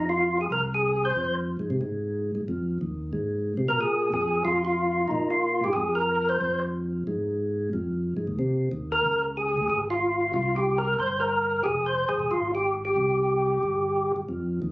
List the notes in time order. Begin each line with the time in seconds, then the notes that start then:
Already playing: F2
0.09 F4
0.41 G#4
0.50 C2 A#4
0.74 G#4
1.05 C5
1.16 F2
1.59 G#2
1.70 C3
1.81 G#2
2.35 G#2
2.48 F2
2.81 D#2
3.13 G#2
3.57 C3
3.68 B2 A#4
3.79 A#2 G#4
4.13 F2 G#4
4.45 F2 F4
4.65 F4
5.08 A#2 D#4
5.30 F4
5.64 G#2 G4
5.73 F2 G#4
5.95 A#4
6.29 C5
6.41 F2
7.07 G#2
7.73 F2
8.17 G#2
8.27 D#2
8.39 C3
8.72 D#2
8.92 A#4
9.04 C#2
9.37 G#4
9.57 D2
9.68 G#1 G#4
9.90 F4
10.33 C2 F4
10.56 F4 G4
10.78 A#4
10.99 G1 C5
11.20 A#4
11.63 F1 G4 G#4
11.86 C5
12.09 G#1 G#4
12.19 E1
12.31 G#1 F4
12.55 G4
12.85 G4
12.96 C2
13.63 G1
14.16 G1
14.29 F2
14.62 D#2